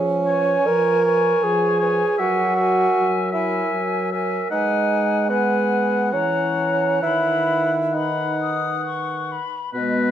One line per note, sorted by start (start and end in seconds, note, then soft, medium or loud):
0.00 0.57 F3 medium
0.00 0.68 C#4 medium
0.27 1.04 B4 soft
0.27 1.03 C#5 soft
0.27 1.04 G#5 soft
0.66 1.34 F3 medium
0.66 1.45 A#4 medium
1.05 1.80 B4 soft
1.05 1.79 C#5 medium
1.05 1.80 G#5 soft
1.43 2.03 F3 medium
1.43 2.21 G#4 medium
1.80 2.19 B4 soft
1.80 2.17 C#5 soft
1.80 2.19 G#5 soft
2.18 2.87 F#3 medium
2.18 3.17 F#4 medium
2.18 2.57 A#4 soft
2.18 2.55 E5 medium
2.18 2.58 G#5 soft
2.56 3.33 A#4 soft
2.56 3.31 E5 soft
2.56 3.32 G#5 soft
2.97 3.63 F#3 medium
3.32 3.71 E4 medium
3.32 4.10 A#4 soft
3.32 4.09 E5 soft
3.32 4.10 G#5 medium
3.72 4.42 F#3 medium
4.12 4.51 A#4 soft
4.12 4.50 E5 soft
4.12 4.52 G#5 soft
4.50 6.15 G#3 medium
4.50 5.31 D#4 medium
4.50 5.26 B4 soft
4.50 5.26 F#5 medium
4.50 5.27 G#5 soft
5.30 6.15 B3 medium
5.30 6.15 B4 soft
5.30 6.11 F#5 soft
5.30 6.12 G#5 soft
6.12 7.02 E3 soft
6.12 7.02 C#4 medium
6.12 7.03 C#5 soft
6.12 7.00 F#5 soft
6.12 7.05 A#5 soft
7.00 9.39 D#3 soft
7.00 7.96 E4 medium
7.00 7.76 B4 soft
7.00 7.75 F#5 soft
7.00 7.71 B5 soft
7.92 8.85 D#4 soft
7.92 9.39 B4 soft
7.92 9.39 F#5 soft
7.92 8.37 B5 soft
8.41 8.85 D#6 soft
8.86 9.33 C#6 soft
9.32 9.74 B5 soft
9.72 10.11 B2 soft
9.72 10.11 G#3 soft
9.72 10.11 B3 medium
9.72 10.11 B4 soft
9.72 10.11 D#5 soft